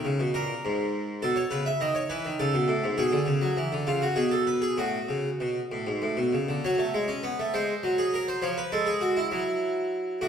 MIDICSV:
0, 0, Header, 1, 2, 480
1, 0, Start_track
1, 0, Key_signature, 3, "minor"
1, 0, Tempo, 588235
1, 1000, Time_signature, 6, 3, 24, 8
1, 2438, Tempo, 607903
1, 5318, Tempo, 595829
1, 8257, End_track
2, 0, Start_track
2, 0, Title_t, "Harpsichord"
2, 0, Program_c, 0, 6
2, 0, Note_on_c, 0, 71, 65
2, 40, Note_on_c, 0, 49, 77
2, 157, Note_off_c, 0, 49, 0
2, 159, Note_on_c, 0, 47, 68
2, 261, Note_off_c, 0, 71, 0
2, 277, Note_off_c, 0, 47, 0
2, 279, Note_on_c, 0, 46, 78
2, 280, Note_on_c, 0, 70, 62
2, 429, Note_off_c, 0, 46, 0
2, 529, Note_on_c, 0, 44, 85
2, 978, Note_off_c, 0, 70, 0
2, 989, Note_off_c, 0, 44, 0
2, 999, Note_on_c, 0, 69, 83
2, 1003, Note_on_c, 0, 47, 76
2, 1109, Note_on_c, 0, 73, 90
2, 1115, Note_off_c, 0, 69, 0
2, 1149, Note_off_c, 0, 47, 0
2, 1229, Note_off_c, 0, 73, 0
2, 1230, Note_on_c, 0, 71, 82
2, 1234, Note_on_c, 0, 49, 72
2, 1350, Note_off_c, 0, 71, 0
2, 1355, Note_on_c, 0, 76, 86
2, 1383, Note_off_c, 0, 49, 0
2, 1472, Note_off_c, 0, 76, 0
2, 1472, Note_on_c, 0, 51, 77
2, 1478, Note_on_c, 0, 75, 86
2, 1590, Note_on_c, 0, 73, 77
2, 1593, Note_off_c, 0, 75, 0
2, 1622, Note_off_c, 0, 51, 0
2, 1709, Note_off_c, 0, 73, 0
2, 1709, Note_on_c, 0, 52, 73
2, 1711, Note_on_c, 0, 71, 83
2, 1829, Note_off_c, 0, 52, 0
2, 1838, Note_on_c, 0, 51, 74
2, 1862, Note_off_c, 0, 71, 0
2, 1954, Note_off_c, 0, 51, 0
2, 1955, Note_on_c, 0, 49, 74
2, 1955, Note_on_c, 0, 69, 87
2, 2072, Note_off_c, 0, 49, 0
2, 2075, Note_on_c, 0, 47, 81
2, 2186, Note_on_c, 0, 45, 69
2, 2193, Note_off_c, 0, 47, 0
2, 2309, Note_off_c, 0, 45, 0
2, 2315, Note_on_c, 0, 44, 70
2, 2424, Note_off_c, 0, 69, 0
2, 2429, Note_on_c, 0, 47, 81
2, 2429, Note_on_c, 0, 68, 74
2, 2434, Note_off_c, 0, 44, 0
2, 2539, Note_on_c, 0, 50, 83
2, 2548, Note_off_c, 0, 47, 0
2, 2657, Note_on_c, 0, 49, 80
2, 2663, Note_off_c, 0, 50, 0
2, 2775, Note_on_c, 0, 54, 75
2, 2780, Note_off_c, 0, 49, 0
2, 2896, Note_on_c, 0, 52, 77
2, 2899, Note_off_c, 0, 54, 0
2, 3018, Note_off_c, 0, 52, 0
2, 3018, Note_on_c, 0, 50, 73
2, 3122, Note_off_c, 0, 68, 0
2, 3133, Note_on_c, 0, 49, 80
2, 3135, Note_on_c, 0, 65, 63
2, 3138, Note_off_c, 0, 50, 0
2, 3253, Note_on_c, 0, 66, 73
2, 3256, Note_off_c, 0, 65, 0
2, 3285, Note_off_c, 0, 49, 0
2, 3361, Note_on_c, 0, 47, 74
2, 3363, Note_on_c, 0, 68, 67
2, 3375, Note_off_c, 0, 66, 0
2, 3485, Note_on_c, 0, 69, 64
2, 3490, Note_off_c, 0, 68, 0
2, 3610, Note_on_c, 0, 71, 60
2, 3611, Note_off_c, 0, 69, 0
2, 3725, Note_on_c, 0, 68, 67
2, 3734, Note_off_c, 0, 71, 0
2, 3840, Note_off_c, 0, 47, 0
2, 3850, Note_on_c, 0, 45, 65
2, 3853, Note_off_c, 0, 68, 0
2, 3853, Note_on_c, 0, 66, 67
2, 4005, Note_off_c, 0, 45, 0
2, 4094, Note_on_c, 0, 49, 65
2, 4249, Note_off_c, 0, 49, 0
2, 4346, Note_on_c, 0, 47, 60
2, 4498, Note_off_c, 0, 47, 0
2, 4592, Note_on_c, 0, 45, 56
2, 4710, Note_off_c, 0, 45, 0
2, 4712, Note_on_c, 0, 44, 62
2, 4831, Note_off_c, 0, 44, 0
2, 4832, Note_on_c, 0, 45, 60
2, 4951, Note_off_c, 0, 45, 0
2, 4951, Note_on_c, 0, 47, 66
2, 5039, Note_off_c, 0, 66, 0
2, 5071, Note_off_c, 0, 47, 0
2, 5075, Note_on_c, 0, 49, 57
2, 5193, Note_off_c, 0, 49, 0
2, 5200, Note_on_c, 0, 50, 62
2, 5315, Note_off_c, 0, 50, 0
2, 5326, Note_on_c, 0, 73, 72
2, 5327, Note_on_c, 0, 54, 87
2, 5437, Note_on_c, 0, 57, 84
2, 5441, Note_off_c, 0, 54, 0
2, 5556, Note_off_c, 0, 57, 0
2, 5565, Note_on_c, 0, 56, 83
2, 5676, Note_on_c, 0, 61, 84
2, 5681, Note_off_c, 0, 56, 0
2, 5796, Note_off_c, 0, 61, 0
2, 5800, Note_on_c, 0, 59, 88
2, 5918, Note_off_c, 0, 59, 0
2, 5930, Note_on_c, 0, 57, 79
2, 6026, Note_off_c, 0, 73, 0
2, 6043, Note_off_c, 0, 57, 0
2, 6045, Note_on_c, 0, 72, 72
2, 6049, Note_on_c, 0, 56, 79
2, 6196, Note_off_c, 0, 56, 0
2, 6283, Note_on_c, 0, 54, 88
2, 6393, Note_off_c, 0, 72, 0
2, 6404, Note_on_c, 0, 68, 78
2, 6520, Note_off_c, 0, 68, 0
2, 6528, Note_on_c, 0, 70, 77
2, 6641, Note_off_c, 0, 70, 0
2, 6645, Note_on_c, 0, 72, 82
2, 6746, Note_off_c, 0, 54, 0
2, 6754, Note_on_c, 0, 53, 95
2, 6759, Note_off_c, 0, 72, 0
2, 6759, Note_on_c, 0, 73, 89
2, 6875, Note_off_c, 0, 73, 0
2, 6882, Note_on_c, 0, 71, 83
2, 6903, Note_off_c, 0, 53, 0
2, 6995, Note_off_c, 0, 71, 0
2, 6998, Note_on_c, 0, 69, 76
2, 7001, Note_on_c, 0, 56, 96
2, 7113, Note_off_c, 0, 69, 0
2, 7115, Note_on_c, 0, 68, 79
2, 7231, Note_off_c, 0, 68, 0
2, 7231, Note_on_c, 0, 66, 71
2, 7349, Note_off_c, 0, 66, 0
2, 7358, Note_on_c, 0, 64, 71
2, 7462, Note_off_c, 0, 56, 0
2, 7477, Note_on_c, 0, 54, 97
2, 8174, Note_off_c, 0, 64, 0
2, 8177, Note_off_c, 0, 54, 0
2, 8201, Note_on_c, 0, 45, 69
2, 8202, Note_on_c, 0, 66, 73
2, 8257, Note_off_c, 0, 45, 0
2, 8257, Note_off_c, 0, 66, 0
2, 8257, End_track
0, 0, End_of_file